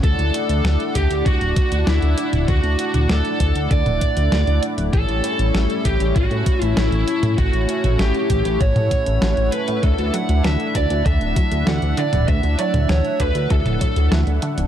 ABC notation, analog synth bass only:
X:1
M:4/4
L:1/16
Q:1/4=98
K:D
V:1 name="Analog synth bass" clef=bass
D,, D,, z D,, D,, z D,, D,, D,, D,,, z D,, D,, D,, z D,,, | D,, D,, z D,, D,, z D,, D,, D,, D,,, z D,, D,, D,, z D,,, | A,,, A,,, z A,,, A,,, z A,,, A,,, A,,, A,, z A,,, A,,, A,,, z A,, | A,,, A,,, z A,,, A,,, z A,,, A,,, A,,, A,, z A,,, A,,, A,,, z A,, |
D,, D,, z D,, D,, z D,, D,, D,, D,,, z D,, D,, D,, z D,,, | D,, D,, z D,, D,, z D,, D,, D,, D,,, z D,, D,, D,, z D,,, |]